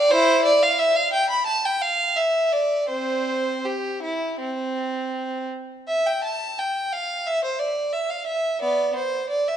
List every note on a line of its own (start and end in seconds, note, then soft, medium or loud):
0.00 0.12 D5 medium
0.10 0.43 E4 medium
0.10 0.45 C5 loud
0.45 0.62 D5 loud
0.63 0.79 F5 medium
0.79 0.96 E5 medium
0.96 1.13 F5 medium
1.13 1.29 G5 medium
1.30 1.47 B5 medium
1.46 1.63 A5 medium
1.66 1.82 G5 medium
1.82 2.17 F5 medium
2.16 2.52 E5 medium
2.52 2.90 D5 medium
2.89 3.61 C4 medium
2.89 3.64 C5 medium
3.65 4.03 G4 medium
4.02 4.39 E4 medium
4.40 5.49 C4 medium
5.88 6.05 E5 medium
6.07 6.25 G5 medium
6.24 6.58 A5 medium
6.59 6.93 G5 medium
6.93 7.27 F5 medium
7.27 7.44 E5 medium
7.44 7.61 C5 medium
7.59 7.94 D5 medium
7.93 8.11 E5 medium
8.11 8.28 F5 medium
8.26 8.61 E5 medium
8.61 8.94 B3 medium
8.61 8.96 D5 medium
8.95 9.30 C5 medium
9.29 9.47 D5 medium
9.48 9.57 E5 medium